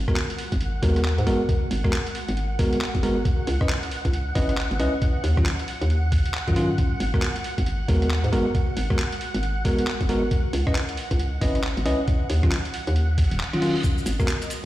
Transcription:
Already playing: string machine F#5
0.08 tine electric piano G#3 B3 F#4 A#4, kick, cross-stick
0.16 clap
0.30 closed hi-hat
0.38 open hi-hat
0.52 fm bass G#1, kick, closed hi-hat
0.61 closed hi-hat
0.83 fm bass D#2, tine electric piano G#3 B3 F#4 A#4, kick, open hi-hat
0.96 cross-stick, closed hi-hat
1.05 clap
1.18 fm bass G#2, closed hi-hat
1.27 fm bass G#1, tine electric piano G#3 B3 F#4 A#4, open hi-hat
1.49 kick, closed hi-hat
1.71 fm bass G#1, open hi-hat
1.84 tine electric piano G#3 B3 F#4 A#4, kick, cross-stick
1.93 clap
2.07 closed hi-hat
2.15 open hi-hat
2.28 fm bass G#1, closed hi-hat
2.37 closed hi-hat
2.59 tine electric piano G#3 B3 F#4 A#4, kick, open hi-hat
2.73 closed hi-hat
2.81 clap
2.95 fm bass G#1, kick, closed hi-hat
3.03 tine electric piano G#3 B3 F#4 A#4, open hi-hat
3.25 kick, closed hi-hat
3.47 fm bass C#2, open hi-hat
3.61 tine electric piano C#4 E4 B4 D#5, kick, cross-stick
3.69 clap
3.83 closed hi-hat
3.91 open hi-hat
4.05 fm bass C#2, kick, closed hi-hat
4.13 closed hi-hat
4.35 fm bass G#1, tine electric piano C#4 E4 B4 D#5, kick, open hi-hat
4.49 cross-stick, closed hi-hat
4.57 clap
4.71 fm bass G#1, closed hi-hat
4.80 fm bass C#2, tine electric piano C#4 E4 B4 D#5, open hi-hat
5.02 kick, closed hi-hat
5.24 fm bass D#2, open hi-hat
5.37 tine electric piano D#3 F#3 C#4 F4, kick, cross-stick
5.46 clap
5.59 closed hi-hat
5.68 open hi-hat
5.81 fm bass D#2, closed hi-hat
5.90 closed hi-hat
6.12 kick, open hi-hat
6.26 closed hi-hat
6.34 clap
6.48 fm bass F#2, tine electric piano D#3 F#3 C#4 F4, kick, cross-stick, closed hi-hat
6.56 fm bass G#2, tine electric piano D#3 F#3 C#4 F4, open hi-hat
6.78 kick, closed hi-hat
7.00 fm bass G#1, open hi-hat
7.14 tine electric piano G#3 B3 F#4 A#4, kick, cross-stick
7.22 clap
7.36 closed hi-hat
7.44 open hi-hat
7.58 fm bass G#1, kick, closed hi-hat
7.66 closed hi-hat
7.88 fm bass D#2, tine electric piano G#3 B3 F#4 A#4, kick, open hi-hat
8.02 cross-stick, closed hi-hat
8.11 clap
8.24 fm bass G#2, closed hi-hat
8.33 fm bass G#1, tine electric piano G#3 B3 F#4 A#4, open hi-hat
8.55 kick, closed hi-hat
8.77 fm bass G#1, open hi-hat
8.90 tine electric piano G#3 B3 F#4 A#4, kick, cross-stick
8.99 clap
9.12 closed hi-hat
9.21 open hi-hat
9.34 fm bass G#1, closed hi-hat
9.43 closed hi-hat
9.65 tine electric piano G#3 B3 F#4 A#4, kick, open hi-hat
9.79 closed hi-hat
9.87 clap
10.01 fm bass G#1, kick, closed hi-hat
10.09 tine electric piano G#3 B3 F#4 A#4, open hi-hat
10.31 kick, closed hi-hat
10.53 fm bass C#2, open hi-hat
10.67 tine electric piano C#4 E4 B4 D#5, kick, cross-stick
10.75 clap
10.89 closed hi-hat
10.97 open hi-hat
11.11 fm bass C#2, kick, closed hi-hat
11.20 closed hi-hat
11.41 fm bass G#1, tine electric piano C#4 E4 B4 D#5, kick, open hi-hat
11.55 cross-stick, closed hi-hat
11.64 clap
11.77 fm bass G#1, closed hi-hat
11.86 fm bass C#2, tine electric piano C#4 E4 B4 D#5, open hi-hat
12.08 kick, closed hi-hat
12.30 fm bass D#2, open hi-hat
12.43 tine electric piano D#3 F#3 C#4 F4, kick, cross-stick, closed hi-hat
12.52 clap
12.65 closed hi-hat
12.74 open hi-hat
12.87 fm bass D#2, closed hi-hat
12.96 closed hi-hat, reverse cymbal
13.18 kick, open hi-hat
13.31 fm bass D#1, closed hi-hat
13.40 clap
13.53 tine electric piano D#3 F#3 C#4 F4, cross-stick, closed hi-hat
13.62 tine electric piano D#3 F#3 C#4 F4, open hi-hat
13.76 closed hi-hat
13.84 string machine D#5, kick, closed hi-hat, maracas
13.98 maracas
14.06 fm bass G#1, open hi-hat, maracas
14.20 tine electric piano G#3 B3 F#4 A#4, kick, cross-stick, maracas
14.28 clap, maracas
14.42 closed hi-hat, maracas
14.50 open hi-hat, maracas

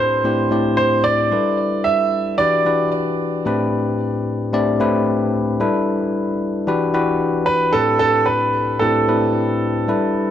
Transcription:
Already playing: tine electric piano A2 C4 D4 E4 G4 B4, grand piano C5
0.24 tine electric piano A2 C4 D4 E4 G4 C5
0.51 tine electric piano A2 C4 D4 E4 G4 D5
0.77 grand piano C5
1.04 grand piano D5
1.31 tine electric piano G3 D4 E4 A4 B4
1.84 grand piano E5
2.38 tine electric piano E3 D4 F#4 G4 B4, grand piano D5
2.65 tine electric piano E3 D4 F#4 G4 B4
3.46 tine electric piano A2 C4 D4 E4 G4 B4
4.53 tine electric piano A2 C4 D4 E4 G4 D5
4.80 tine electric piano A2 C4 D4 E4 G4 B4
5.60 tine electric piano G3 D4 E4 A4 B4
6.67 tine electric piano E3 D4 F#4 G4 B4
6.93 tine electric piano E3 D4 F#4 G4 B4
7.46 grand piano B4
7.73 tine electric piano A2 C4 D4 E4 G4 B4, grand piano A4
7.99 grand piano A4
8.26 grand piano B4
8.79 tine electric piano A2 C4 D4 E4 G4 B4, grand piano A4
9.08 tine electric piano A2 C4 D4 E4 G4 B4
9.88 tine electric piano G3 D4 E4 A4 B4

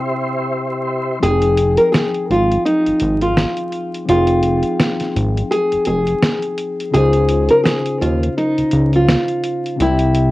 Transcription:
Already playing: tine electric piano C3 C4 E4 G4 G5, tonewheel organ G4 C5 E5 C6
1.20 analog synth bass F1, tine electric piano F3 C4 D#4, nylon-string guitar G#4, closed hi-hat
1.24 tine electric piano G#4 G5
1.42 closed hi-hat
1.57 closed hi-hat
1.77 nylon-string guitar A#4, closed hi-hat
1.92 nylon-string guitar G#4, snare, closed hi-hat
2.14 closed hi-hat
2.30 analog synth bass G#1, nylon-string guitar F4, closed hi-hat
2.52 closed hi-hat
2.65 nylon-string guitar D#4, closed hi-hat
2.86 analog synth bass G#1, closed hi-hat
3.00 analog synth bass G#1, closed hi-hat
3.21 nylon-string guitar F4, closed hi-hat
3.37 snare, closed hi-hat
3.57 closed hi-hat
3.72 closed hi-hat
3.94 closed hi-hat
4.06 analog synth bass F1, tine electric piano F3 C4 D#4, nylon-string guitar F4, closed hi-hat
4.10 tine electric piano G#4 G5
4.27 closed hi-hat
4.43 closed hi-hat
4.63 closed hi-hat
4.80 snare, closed hi-hat
5.00 snare, closed hi-hat
5.16 analog synth bass G#1, closed hi-hat
5.37 closed hi-hat
5.51 nylon-string guitar G#4, closed hi-hat
5.72 analog synth bass F1, closed hi-hat
5.85 analog synth bass F1, nylon-string guitar G#4, closed hi-hat
6.07 closed hi-hat
6.23 snare, closed hi-hat
6.42 closed hi-hat
6.58 closed hi-hat
6.80 closed hi-hat
6.91 analog synth bass C#2, tine electric piano C#3 C#4 D#4, nylon-string guitar G#4, closed hi-hat
6.96 tine electric piano F4 C5
7.13 closed hi-hat
7.29 closed hi-hat
7.49 nylon-string guitar A#4, closed hi-hat
7.64 nylon-string guitar G#4, snare, closed hi-hat
7.86 closed hi-hat
8.01 analog synth bass D#2, nylon-string guitar F4, closed hi-hat
8.23 closed hi-hat
8.38 nylon-string guitar D#4, closed hi-hat
8.58 analog synth bass C#2, closed hi-hat
8.71 analog synth bass C#2, closed hi-hat
8.93 nylon-string guitar F4, closed hi-hat
9.09 snare, closed hi-hat
9.28 closed hi-hat
9.44 closed hi-hat
9.66 closed hi-hat
9.76 tine electric piano C3 C4 E4
9.80 analog synth bass C2, nylon-string guitar E4, tine electric piano G4 G5, closed hi-hat
9.99 closed hi-hat
10.14 closed hi-hat

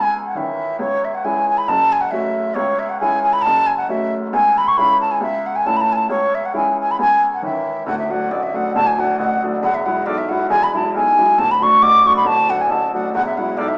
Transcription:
Already playing: upright piano C#2, flute G#5
0.27 flute F#5
0.35 upright piano D#3 E3 C#4, flute E5
0.79 upright piano C#2, flute C#5
1.05 flute E5
1.15 flute F#5
1.24 upright piano G#3 C#4 E4, flute G#5
1.49 flute G#5
1.58 flute B5
1.68 upright piano F#1 F#2, flute A5
1.92 flute G#5
2.01 flute F#5
2.11 upright piano A3 C#4 F#4, flute E5
2.55 upright piano C#2, flute C#5
2.79 flute E5
2.89 flute F#5
3.00 upright piano G#3 C#4 E4, flute G#5
3.23 flute G#5
3.33 flute B5
3.42 upright piano F#1, flute A5
3.46 upright piano F#2
3.67 flute G#5
3.77 flute F#5
3.89 upright piano A3 C#4 F#4, flute E5
4.33 upright piano C#2, flute G#5
4.58 flute B5
4.68 flute C#6
4.77 upright piano G#3 C#4 E4, flute B5
5.01 flute A5
5.11 flute G#5
5.21 upright piano C#2, flute E5
5.46 flute F#5
5.56 flute G#5
5.66 upright piano A3 C#4 E4, flute A5
5.77 flute B5
5.81 flute A5
5.93 flute G#5 A5
6.09 upright piano C#2, flute C#5
6.35 flute E5
6.45 flute F#5
6.54 upright piano G#3 C#4 E4, flute G#5
6.80 flute G#5
6.91 flute B5
6.99 upright piano C#2, flute G#5
7.34 flute F#5
7.42 upright piano D#3 E3 C#4, flute E5
7.87 upright piano D1 D2, flute F#5
7.99 flute E5
8.10 upright piano F#3 A3 D4, flute F#5
8.31 upright piano A1, flute D5
8.43 flute E5
8.54 upright piano F#3 A3 D4, flute F#5
8.75 upright piano D1 D2, flute A5
8.87 flute G#5
8.98 upright piano F#3 A3 D4, flute F#5
9.19 upright piano A1, flute F#5
9.43 upright piano F#3 A3 D4
9.62 upright piano E1 E2, flute F#5
9.75 flute E5
9.86 upright piano F#3 G#3 E4, flute F#5
10.06 upright piano B1, flute D5
10.18 flute E5
10.29 upright piano F#3 G#3 E4, flute F#5
10.50 upright piano E1 E2, flute G#5
10.63 flute B5
10.74 upright piano F#3 G#3 E4, flute A5
10.94 upright piano B1, flute G#5
11.18 upright piano F#3 G#3 E4
11.38 upright piano D1 D2, flute A5
11.51 flute B5
11.61 upright piano F#3 A3 D4, flute C#6
11.82 upright piano A1, flute D6
12.06 upright piano F#3 A3 D4, flute C#6
12.17 flute B5
12.25 upright piano D1 D2, flute A5
12.49 upright piano F#3 A3 D4, flute F#5
12.61 flute G#5
12.69 upright piano A1, flute A5
12.94 upright piano F#3 A3 D4, flute F#5
13.14 upright piano E1 E2, flute F#5
13.26 flute E5
13.37 upright piano F#3 G#3 E4, flute F#5
13.57 upright piano B1, flute D5
13.68 flute E5

